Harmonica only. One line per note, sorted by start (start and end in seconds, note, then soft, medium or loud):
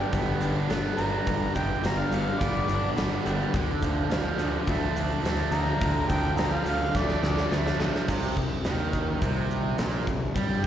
0.00 0.38 G5 loud
0.98 1.54 A#5 loud
1.55 1.83 G5 medium
1.86 2.00 A#5 loud
1.99 2.42 F5 loud
2.40 2.96 D5 loud
5.52 6.11 A#5 loud
6.10 6.37 G5 loud
6.38 6.54 A#5 medium
6.52 6.97 F5 medium
6.96 7.50 D5 loud